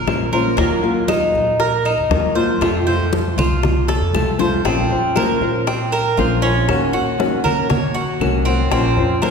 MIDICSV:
0, 0, Header, 1, 6, 480
1, 0, Start_track
1, 0, Key_signature, -5, "minor"
1, 0, Tempo, 508475
1, 548, Time_signature, 4, 2, 24, 8
1, 8784, End_track
2, 0, Start_track
2, 0, Title_t, "Cuban tres"
2, 0, Program_c, 0, 25
2, 0, Note_on_c, 0, 70, 75
2, 292, Note_off_c, 0, 70, 0
2, 308, Note_on_c, 0, 70, 68
2, 538, Note_on_c, 0, 58, 78
2, 541, Note_off_c, 0, 70, 0
2, 1009, Note_off_c, 0, 58, 0
2, 1020, Note_on_c, 0, 63, 68
2, 1491, Note_off_c, 0, 63, 0
2, 1508, Note_on_c, 0, 70, 67
2, 1742, Note_off_c, 0, 70, 0
2, 1749, Note_on_c, 0, 63, 74
2, 2215, Note_off_c, 0, 63, 0
2, 2221, Note_on_c, 0, 72, 69
2, 2458, Note_off_c, 0, 72, 0
2, 2465, Note_on_c, 0, 65, 66
2, 2700, Note_off_c, 0, 65, 0
2, 2706, Note_on_c, 0, 72, 73
2, 3174, Note_off_c, 0, 72, 0
2, 3189, Note_on_c, 0, 65, 73
2, 3655, Note_off_c, 0, 65, 0
2, 3666, Note_on_c, 0, 69, 78
2, 4134, Note_off_c, 0, 69, 0
2, 4149, Note_on_c, 0, 72, 68
2, 4383, Note_off_c, 0, 72, 0
2, 4388, Note_on_c, 0, 60, 82
2, 4855, Note_off_c, 0, 60, 0
2, 4867, Note_on_c, 0, 70, 70
2, 5335, Note_off_c, 0, 70, 0
2, 5353, Note_on_c, 0, 60, 75
2, 5585, Note_off_c, 0, 60, 0
2, 5591, Note_on_c, 0, 70, 79
2, 5824, Note_off_c, 0, 70, 0
2, 5828, Note_on_c, 0, 65, 71
2, 6061, Note_on_c, 0, 61, 82
2, 6062, Note_off_c, 0, 65, 0
2, 6531, Note_off_c, 0, 61, 0
2, 6545, Note_on_c, 0, 66, 76
2, 7013, Note_off_c, 0, 66, 0
2, 7023, Note_on_c, 0, 70, 75
2, 7259, Note_off_c, 0, 70, 0
2, 7265, Note_on_c, 0, 73, 61
2, 7500, Note_off_c, 0, 73, 0
2, 7500, Note_on_c, 0, 66, 74
2, 7970, Note_off_c, 0, 66, 0
2, 7979, Note_on_c, 0, 60, 82
2, 8216, Note_off_c, 0, 60, 0
2, 8227, Note_on_c, 0, 60, 80
2, 8693, Note_off_c, 0, 60, 0
2, 8702, Note_on_c, 0, 70, 72
2, 8784, Note_off_c, 0, 70, 0
2, 8784, End_track
3, 0, Start_track
3, 0, Title_t, "Nylon-string guitar"
3, 0, Program_c, 1, 24
3, 66, Note_on_c, 1, 58, 48
3, 71, Note_on_c, 1, 65, 54
3, 72, Note_on_c, 1, 61, 50
3, 76, Note_on_c, 1, 72, 54
3, 298, Note_off_c, 1, 58, 0
3, 300, Note_off_c, 1, 65, 0
3, 301, Note_off_c, 1, 61, 0
3, 303, Note_off_c, 1, 72, 0
3, 315, Note_on_c, 1, 72, 61
3, 316, Note_on_c, 1, 65, 64
3, 326, Note_on_c, 1, 61, 57
3, 330, Note_on_c, 1, 58, 62
3, 542, Note_off_c, 1, 72, 0
3, 543, Note_off_c, 1, 65, 0
3, 545, Note_off_c, 1, 58, 0
3, 545, Note_on_c, 1, 51, 71
3, 548, Note_off_c, 1, 61, 0
3, 553, Note_on_c, 1, 54, 78
3, 556, Note_on_c, 1, 58, 81
3, 557, Note_on_c, 1, 65, 83
3, 771, Note_off_c, 1, 65, 0
3, 777, Note_off_c, 1, 51, 0
3, 779, Note_off_c, 1, 58, 0
3, 781, Note_off_c, 1, 54, 0
3, 782, Note_on_c, 1, 65, 75
3, 790, Note_on_c, 1, 58, 63
3, 799, Note_on_c, 1, 54, 59
3, 1493, Note_off_c, 1, 54, 0
3, 1500, Note_off_c, 1, 58, 0
3, 1510, Note_off_c, 1, 65, 0
3, 1993, Note_on_c, 1, 51, 52
3, 1999, Note_on_c, 1, 54, 52
3, 2003, Note_on_c, 1, 58, 55
3, 2009, Note_on_c, 1, 65, 57
3, 2210, Note_off_c, 1, 65, 0
3, 2221, Note_off_c, 1, 58, 0
3, 2222, Note_off_c, 1, 51, 0
3, 2222, Note_on_c, 1, 65, 71
3, 2225, Note_off_c, 1, 54, 0
3, 2233, Note_on_c, 1, 58, 63
3, 2241, Note_on_c, 1, 54, 58
3, 2456, Note_off_c, 1, 65, 0
3, 2461, Note_on_c, 1, 48, 70
3, 2462, Note_off_c, 1, 58, 0
3, 2464, Note_off_c, 1, 54, 0
3, 2468, Note_on_c, 1, 53, 72
3, 2471, Note_on_c, 1, 57, 77
3, 2472, Note_on_c, 1, 60, 87
3, 2478, Note_on_c, 1, 65, 91
3, 2693, Note_off_c, 1, 65, 0
3, 2696, Note_off_c, 1, 48, 0
3, 2700, Note_off_c, 1, 53, 0
3, 2700, Note_off_c, 1, 60, 0
3, 2701, Note_off_c, 1, 57, 0
3, 2704, Note_on_c, 1, 65, 70
3, 2711, Note_on_c, 1, 60, 58
3, 2717, Note_on_c, 1, 57, 59
3, 2722, Note_on_c, 1, 53, 61
3, 3418, Note_off_c, 1, 53, 0
3, 3418, Note_off_c, 1, 65, 0
3, 3422, Note_off_c, 1, 60, 0
3, 3425, Note_off_c, 1, 57, 0
3, 3909, Note_on_c, 1, 53, 45
3, 3917, Note_on_c, 1, 57, 50
3, 3922, Note_on_c, 1, 60, 54
3, 3927, Note_on_c, 1, 65, 53
3, 4141, Note_off_c, 1, 53, 0
3, 4145, Note_off_c, 1, 57, 0
3, 4147, Note_off_c, 1, 60, 0
3, 4147, Note_off_c, 1, 65, 0
3, 4158, Note_on_c, 1, 65, 63
3, 4161, Note_on_c, 1, 60, 58
3, 4167, Note_on_c, 1, 57, 60
3, 4172, Note_on_c, 1, 53, 48
3, 4385, Note_off_c, 1, 65, 0
3, 4387, Note_off_c, 1, 60, 0
3, 4388, Note_off_c, 1, 53, 0
3, 4389, Note_off_c, 1, 57, 0
3, 4399, Note_on_c, 1, 53, 80
3, 4399, Note_on_c, 1, 58, 72
3, 4406, Note_on_c, 1, 61, 77
3, 4410, Note_on_c, 1, 65, 78
3, 4413, Note_on_c, 1, 72, 84
3, 4626, Note_off_c, 1, 53, 0
3, 4626, Note_off_c, 1, 58, 0
3, 4626, Note_off_c, 1, 72, 0
3, 4629, Note_off_c, 1, 61, 0
3, 4631, Note_off_c, 1, 65, 0
3, 4638, Note_on_c, 1, 72, 51
3, 4647, Note_on_c, 1, 65, 42
3, 4654, Note_on_c, 1, 61, 38
3, 4865, Note_off_c, 1, 72, 0
3, 4870, Note_off_c, 1, 61, 0
3, 4870, Note_off_c, 1, 65, 0
3, 4874, Note_on_c, 1, 53, 68
3, 4880, Note_on_c, 1, 58, 73
3, 4881, Note_on_c, 1, 61, 64
3, 4886, Note_on_c, 1, 65, 69
3, 4888, Note_on_c, 1, 72, 69
3, 5103, Note_off_c, 1, 53, 0
3, 5104, Note_off_c, 1, 72, 0
3, 5106, Note_off_c, 1, 58, 0
3, 5107, Note_off_c, 1, 61, 0
3, 5109, Note_off_c, 1, 65, 0
3, 5115, Note_on_c, 1, 72, 47
3, 5123, Note_on_c, 1, 65, 39
3, 5129, Note_on_c, 1, 61, 42
3, 5344, Note_off_c, 1, 72, 0
3, 5348, Note_off_c, 1, 61, 0
3, 5348, Note_off_c, 1, 65, 0
3, 5833, Note_on_c, 1, 53, 75
3, 5834, Note_on_c, 1, 58, 80
3, 5839, Note_on_c, 1, 61, 73
3, 5843, Note_on_c, 1, 65, 77
3, 5847, Note_on_c, 1, 72, 78
3, 6053, Note_off_c, 1, 72, 0
3, 6062, Note_off_c, 1, 53, 0
3, 6063, Note_off_c, 1, 58, 0
3, 6063, Note_off_c, 1, 65, 0
3, 6064, Note_on_c, 1, 72, 46
3, 6065, Note_off_c, 1, 61, 0
3, 6075, Note_on_c, 1, 65, 45
3, 6085, Note_on_c, 1, 61, 39
3, 6298, Note_off_c, 1, 72, 0
3, 6303, Note_off_c, 1, 65, 0
3, 6306, Note_off_c, 1, 61, 0
3, 6307, Note_on_c, 1, 51, 76
3, 6312, Note_on_c, 1, 58, 83
3, 6316, Note_on_c, 1, 66, 87
3, 6318, Note_on_c, 1, 61, 84
3, 6536, Note_off_c, 1, 66, 0
3, 6539, Note_off_c, 1, 51, 0
3, 6542, Note_off_c, 1, 58, 0
3, 6544, Note_off_c, 1, 61, 0
3, 6547, Note_on_c, 1, 66, 53
3, 6557, Note_on_c, 1, 61, 47
3, 6560, Note_on_c, 1, 58, 40
3, 6776, Note_off_c, 1, 58, 0
3, 6778, Note_on_c, 1, 51, 71
3, 6779, Note_off_c, 1, 66, 0
3, 6780, Note_off_c, 1, 61, 0
3, 6787, Note_on_c, 1, 58, 69
3, 6791, Note_on_c, 1, 61, 73
3, 6792, Note_on_c, 1, 66, 76
3, 7012, Note_off_c, 1, 66, 0
3, 7014, Note_off_c, 1, 51, 0
3, 7019, Note_off_c, 1, 58, 0
3, 7021, Note_off_c, 1, 61, 0
3, 7023, Note_on_c, 1, 66, 41
3, 7032, Note_on_c, 1, 61, 46
3, 7037, Note_on_c, 1, 58, 38
3, 7256, Note_off_c, 1, 61, 0
3, 7257, Note_off_c, 1, 66, 0
3, 7258, Note_off_c, 1, 58, 0
3, 7752, Note_on_c, 1, 51, 74
3, 7761, Note_on_c, 1, 58, 75
3, 7767, Note_on_c, 1, 61, 77
3, 7771, Note_on_c, 1, 66, 82
3, 7978, Note_off_c, 1, 66, 0
3, 7981, Note_off_c, 1, 51, 0
3, 7985, Note_off_c, 1, 58, 0
3, 7988, Note_off_c, 1, 61, 0
3, 7989, Note_on_c, 1, 66, 57
3, 8002, Note_on_c, 1, 61, 46
3, 8006, Note_on_c, 1, 58, 40
3, 8219, Note_off_c, 1, 66, 0
3, 8221, Note_off_c, 1, 58, 0
3, 8222, Note_off_c, 1, 61, 0
3, 8228, Note_on_c, 1, 53, 79
3, 8232, Note_on_c, 1, 58, 80
3, 8234, Note_on_c, 1, 61, 78
3, 8236, Note_on_c, 1, 65, 79
3, 8247, Note_on_c, 1, 72, 75
3, 8454, Note_off_c, 1, 72, 0
3, 8459, Note_off_c, 1, 53, 0
3, 8461, Note_off_c, 1, 58, 0
3, 8461, Note_off_c, 1, 61, 0
3, 8463, Note_off_c, 1, 65, 0
3, 8465, Note_on_c, 1, 72, 53
3, 8479, Note_on_c, 1, 65, 49
3, 8480, Note_on_c, 1, 61, 38
3, 8697, Note_off_c, 1, 72, 0
3, 8704, Note_off_c, 1, 65, 0
3, 8705, Note_off_c, 1, 61, 0
3, 8708, Note_on_c, 1, 53, 69
3, 8712, Note_on_c, 1, 58, 68
3, 8715, Note_on_c, 1, 61, 71
3, 8719, Note_on_c, 1, 65, 75
3, 8720, Note_on_c, 1, 72, 78
3, 8784, Note_off_c, 1, 53, 0
3, 8784, Note_off_c, 1, 58, 0
3, 8784, Note_off_c, 1, 61, 0
3, 8784, Note_off_c, 1, 65, 0
3, 8784, Note_off_c, 1, 72, 0
3, 8784, End_track
4, 0, Start_track
4, 0, Title_t, "Upright bass"
4, 0, Program_c, 2, 32
4, 71, Note_on_c, 2, 34, 91
4, 526, Note_off_c, 2, 34, 0
4, 543, Note_on_c, 2, 39, 116
4, 1230, Note_off_c, 2, 39, 0
4, 1261, Note_on_c, 2, 34, 91
4, 1836, Note_off_c, 2, 34, 0
4, 1863, Note_on_c, 2, 39, 86
4, 1974, Note_off_c, 2, 39, 0
4, 1979, Note_on_c, 2, 39, 99
4, 2441, Note_off_c, 2, 39, 0
4, 2465, Note_on_c, 2, 41, 112
4, 3152, Note_off_c, 2, 41, 0
4, 3185, Note_on_c, 2, 36, 92
4, 3758, Note_off_c, 2, 36, 0
4, 3785, Note_on_c, 2, 41, 86
4, 3897, Note_off_c, 2, 41, 0
4, 3902, Note_on_c, 2, 36, 93
4, 4363, Note_off_c, 2, 36, 0
4, 4387, Note_on_c, 2, 34, 104
4, 4617, Note_off_c, 2, 34, 0
4, 4624, Note_on_c, 2, 41, 84
4, 4856, Note_off_c, 2, 41, 0
4, 5102, Note_on_c, 2, 46, 82
4, 5790, Note_off_c, 2, 46, 0
4, 5830, Note_on_c, 2, 34, 110
4, 6286, Note_off_c, 2, 34, 0
4, 6309, Note_on_c, 2, 39, 108
4, 6538, Note_off_c, 2, 39, 0
4, 6549, Note_on_c, 2, 34, 83
4, 6777, Note_off_c, 2, 34, 0
4, 7025, Note_on_c, 2, 51, 82
4, 7711, Note_off_c, 2, 51, 0
4, 7739, Note_on_c, 2, 36, 105
4, 8199, Note_off_c, 2, 36, 0
4, 8221, Note_on_c, 2, 34, 109
4, 8452, Note_off_c, 2, 34, 0
4, 8464, Note_on_c, 2, 41, 87
4, 8694, Note_off_c, 2, 41, 0
4, 8784, End_track
5, 0, Start_track
5, 0, Title_t, "Muted nylon-string guitar strokes"
5, 1503, Note_on_c, 9, 29, 56
5, 1598, Note_off_c, 9, 29, 0
5, 3429, Note_on_c, 9, 29, 57
5, 3524, Note_off_c, 9, 29, 0
5, 5354, Note_on_c, 9, 29, 52
5, 5449, Note_off_c, 9, 29, 0
5, 7268, Note_on_c, 9, 29, 62
5, 7362, Note_off_c, 9, 29, 0
5, 8784, End_track
6, 0, Start_track
6, 0, Title_t, "Drums"
6, 69, Note_on_c, 9, 63, 83
6, 71, Note_on_c, 9, 75, 68
6, 72, Note_on_c, 9, 60, 70
6, 72, Note_on_c, 9, 61, 79
6, 163, Note_off_c, 9, 63, 0
6, 166, Note_off_c, 9, 60, 0
6, 166, Note_off_c, 9, 61, 0
6, 166, Note_off_c, 9, 75, 0
6, 310, Note_on_c, 9, 63, 69
6, 314, Note_on_c, 9, 60, 37
6, 404, Note_off_c, 9, 63, 0
6, 409, Note_off_c, 9, 60, 0
6, 548, Note_on_c, 9, 60, 69
6, 552, Note_on_c, 9, 63, 33
6, 643, Note_off_c, 9, 60, 0
6, 646, Note_off_c, 9, 63, 0
6, 790, Note_on_c, 9, 60, 34
6, 791, Note_on_c, 9, 63, 36
6, 885, Note_off_c, 9, 60, 0
6, 886, Note_off_c, 9, 63, 0
6, 1023, Note_on_c, 9, 63, 90
6, 1029, Note_on_c, 9, 75, 65
6, 1032, Note_on_c, 9, 60, 58
6, 1117, Note_off_c, 9, 63, 0
6, 1123, Note_off_c, 9, 75, 0
6, 1127, Note_off_c, 9, 60, 0
6, 1273, Note_on_c, 9, 63, 33
6, 1277, Note_on_c, 9, 60, 36
6, 1367, Note_off_c, 9, 63, 0
6, 1371, Note_off_c, 9, 60, 0
6, 1507, Note_on_c, 9, 60, 65
6, 1514, Note_on_c, 9, 63, 36
6, 1602, Note_off_c, 9, 60, 0
6, 1609, Note_off_c, 9, 63, 0
6, 1757, Note_on_c, 9, 63, 34
6, 1757, Note_on_c, 9, 75, 67
6, 1851, Note_off_c, 9, 63, 0
6, 1851, Note_off_c, 9, 75, 0
6, 1992, Note_on_c, 9, 60, 68
6, 1992, Note_on_c, 9, 61, 77
6, 1994, Note_on_c, 9, 63, 76
6, 2086, Note_off_c, 9, 60, 0
6, 2086, Note_off_c, 9, 61, 0
6, 2088, Note_off_c, 9, 63, 0
6, 2231, Note_on_c, 9, 60, 35
6, 2326, Note_off_c, 9, 60, 0
6, 2468, Note_on_c, 9, 63, 31
6, 2474, Note_on_c, 9, 60, 70
6, 2476, Note_on_c, 9, 75, 66
6, 2562, Note_off_c, 9, 63, 0
6, 2569, Note_off_c, 9, 60, 0
6, 2571, Note_off_c, 9, 75, 0
6, 2712, Note_on_c, 9, 63, 33
6, 2713, Note_on_c, 9, 60, 36
6, 2806, Note_off_c, 9, 63, 0
6, 2808, Note_off_c, 9, 60, 0
6, 2952, Note_on_c, 9, 63, 90
6, 2953, Note_on_c, 9, 60, 55
6, 3046, Note_off_c, 9, 63, 0
6, 3048, Note_off_c, 9, 60, 0
6, 3196, Note_on_c, 9, 75, 58
6, 3198, Note_on_c, 9, 63, 86
6, 3198, Note_on_c, 9, 64, 77
6, 3291, Note_off_c, 9, 75, 0
6, 3293, Note_off_c, 9, 63, 0
6, 3293, Note_off_c, 9, 64, 0
6, 3430, Note_on_c, 9, 60, 70
6, 3442, Note_on_c, 9, 63, 33
6, 3442, Note_on_c, 9, 64, 72
6, 3525, Note_off_c, 9, 60, 0
6, 3537, Note_off_c, 9, 63, 0
6, 3537, Note_off_c, 9, 64, 0
6, 3670, Note_on_c, 9, 60, 101
6, 3684, Note_on_c, 9, 63, 33
6, 3764, Note_off_c, 9, 60, 0
6, 3778, Note_off_c, 9, 63, 0
6, 3913, Note_on_c, 9, 60, 68
6, 3916, Note_on_c, 9, 75, 68
6, 3925, Note_on_c, 9, 63, 83
6, 4007, Note_off_c, 9, 60, 0
6, 4011, Note_off_c, 9, 75, 0
6, 4020, Note_off_c, 9, 63, 0
6, 4146, Note_on_c, 9, 61, 92
6, 4166, Note_on_c, 9, 63, 73
6, 4241, Note_off_c, 9, 61, 0
6, 4260, Note_off_c, 9, 63, 0
6, 4393, Note_on_c, 9, 60, 69
6, 4400, Note_on_c, 9, 63, 34
6, 4487, Note_off_c, 9, 60, 0
6, 4494, Note_off_c, 9, 63, 0
6, 4630, Note_on_c, 9, 60, 34
6, 4641, Note_on_c, 9, 63, 31
6, 4724, Note_off_c, 9, 60, 0
6, 4736, Note_off_c, 9, 63, 0
6, 4869, Note_on_c, 9, 60, 53
6, 4873, Note_on_c, 9, 75, 64
6, 4881, Note_on_c, 9, 63, 91
6, 4963, Note_off_c, 9, 60, 0
6, 4968, Note_off_c, 9, 75, 0
6, 4976, Note_off_c, 9, 63, 0
6, 5114, Note_on_c, 9, 60, 39
6, 5118, Note_on_c, 9, 63, 31
6, 5208, Note_off_c, 9, 60, 0
6, 5212, Note_off_c, 9, 63, 0
6, 5357, Note_on_c, 9, 60, 63
6, 5359, Note_on_c, 9, 63, 34
6, 5451, Note_off_c, 9, 60, 0
6, 5453, Note_off_c, 9, 63, 0
6, 5593, Note_on_c, 9, 63, 33
6, 5596, Note_on_c, 9, 75, 66
6, 5601, Note_on_c, 9, 60, 35
6, 5688, Note_off_c, 9, 63, 0
6, 5690, Note_off_c, 9, 75, 0
6, 5695, Note_off_c, 9, 60, 0
6, 5836, Note_on_c, 9, 63, 34
6, 5842, Note_on_c, 9, 60, 33
6, 5842, Note_on_c, 9, 61, 81
6, 5930, Note_off_c, 9, 63, 0
6, 5936, Note_off_c, 9, 60, 0
6, 5936, Note_off_c, 9, 61, 0
6, 6079, Note_on_c, 9, 63, 37
6, 6173, Note_off_c, 9, 63, 0
6, 6312, Note_on_c, 9, 60, 71
6, 6313, Note_on_c, 9, 75, 67
6, 6315, Note_on_c, 9, 63, 33
6, 6407, Note_off_c, 9, 60, 0
6, 6408, Note_off_c, 9, 75, 0
6, 6409, Note_off_c, 9, 63, 0
6, 6557, Note_on_c, 9, 60, 34
6, 6557, Note_on_c, 9, 63, 33
6, 6651, Note_off_c, 9, 63, 0
6, 6652, Note_off_c, 9, 60, 0
6, 6795, Note_on_c, 9, 60, 57
6, 6796, Note_on_c, 9, 63, 92
6, 6889, Note_off_c, 9, 60, 0
6, 6890, Note_off_c, 9, 63, 0
6, 7031, Note_on_c, 9, 75, 64
6, 7033, Note_on_c, 9, 60, 37
6, 7041, Note_on_c, 9, 63, 31
6, 7041, Note_on_c, 9, 64, 73
6, 7126, Note_off_c, 9, 75, 0
6, 7128, Note_off_c, 9, 60, 0
6, 7135, Note_off_c, 9, 63, 0
6, 7135, Note_off_c, 9, 64, 0
6, 7270, Note_on_c, 9, 60, 65
6, 7278, Note_on_c, 9, 63, 34
6, 7278, Note_on_c, 9, 64, 77
6, 7364, Note_off_c, 9, 60, 0
6, 7372, Note_off_c, 9, 63, 0
6, 7372, Note_off_c, 9, 64, 0
6, 7515, Note_on_c, 9, 60, 38
6, 7517, Note_on_c, 9, 63, 35
6, 7610, Note_off_c, 9, 60, 0
6, 7611, Note_off_c, 9, 63, 0
6, 7752, Note_on_c, 9, 75, 72
6, 7754, Note_on_c, 9, 60, 33
6, 7754, Note_on_c, 9, 61, 81
6, 7760, Note_on_c, 9, 63, 83
6, 7847, Note_off_c, 9, 75, 0
6, 7849, Note_off_c, 9, 60, 0
6, 7849, Note_off_c, 9, 61, 0
6, 7854, Note_off_c, 9, 63, 0
6, 8227, Note_on_c, 9, 60, 71
6, 8234, Note_on_c, 9, 63, 33
6, 8322, Note_off_c, 9, 60, 0
6, 8329, Note_off_c, 9, 63, 0
6, 8470, Note_on_c, 9, 60, 35
6, 8473, Note_on_c, 9, 63, 34
6, 8565, Note_off_c, 9, 60, 0
6, 8568, Note_off_c, 9, 63, 0
6, 8706, Note_on_c, 9, 60, 54
6, 8707, Note_on_c, 9, 75, 64
6, 8713, Note_on_c, 9, 63, 90
6, 8784, Note_off_c, 9, 60, 0
6, 8784, Note_off_c, 9, 63, 0
6, 8784, Note_off_c, 9, 75, 0
6, 8784, End_track
0, 0, End_of_file